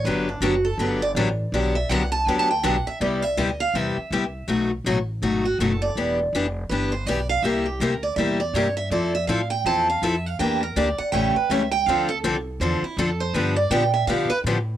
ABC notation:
X:1
M:4/4
L:1/16
Q:"Swing" 1/4=162
K:G
V:1 name="Steel-string acoustic guitar"
B2 D2 F2 A2 B2 d2 z4 | d2 e2 f2 a2 (3g2 a2 g2 f2 e2 | [K:C] d2 e2 _e2 f2 =e8 | z8 z2 ^F2 A2 d2- |
d2 z6 B2 c2 d2 f2 | e2 G2 _B2 d2 e2 d2 _d2 e2 | d2 e2 f2 g2 a2 f2 e2 f2 | g2 _B2 d2 ^f2 g2 =B2 e2 g2 |
f2 A2 z4 c2 E2 A2 c2 | B2 d2 g2 e2 f2 B2 z4 |]
V:2 name="Steel-string acoustic guitar"
[D,F,B,DG]2 z2 [D,F,B,DG] z3 [D,F,B,DG]2 z2 [D,F,B,DG] z3 | [D,F,B,DG]2 z2 [D,F,B,DG] z3 [D,F,B,DG]2 z2 [D,F,B,DG] z3 | [K:C] [C,G,B,EG]2 z2 [C,G,B,EG] z3 [C,G,B,EG]2 z2 [C,G,B,EG] z3 | [B,,^F,A,^D^F]2 z2 [B,,F,A,DF] z3 [B,,F,A,DF]2 z2 [B,,F,A,DF] z3 |
[E,B,DG]2 z2 [E,B,DG] z3 [E,B,DG]2 z2 [E,B,DG] z3 | [C,G,_B,EG]2 z2 [C,G,B,EG] z3 [C,G,B,EG]2 z2 [C,G,B,EG] z3 | [F,CEA]2 z2 [F,CEA] z3 [F,CEA]2 z2 [F,CEA] z3 | [E,_B,DG]2 z2 [E,B,DG] z3 [^C,E,A,^CG]2 z2 [C,E,A,CG] z3 |
[D,F,CDA]2 z2 [D,F,CDA] z3 [D,F,CDA]2 z2 [D,F,CDA] z3 | [D,F,B,DG]2 z2 [D,F,B,DG] z3 [D,F,B,DG]2 z2 [D,F,B,DG] z3 |]
V:3 name="Upright bass" clef=bass
G,,,4 F,,,4 G,,,4 A,,,4 | B,,,4 C,,4 D,,4 B,,,2 z2 | [K:C] C,,4 D,,4 E,,2 z2 C,,4 | B,,,4 A,,,4 _A,,,4 ^F,,,4 |
E,,,4 F,,,4 G,,,4 B,,,4 | C,,4 D,,4 E,,4 G,,4 | F,,4 A,,4 E,,4 F,,4 | E,,4 D,,2 z2 A,,,2 z2 ^C,,4 |
D,,4 C,,4 E,,2 z2 F,,4 | G,,4 _B,,4 =B,,2 z2 A,,4 |]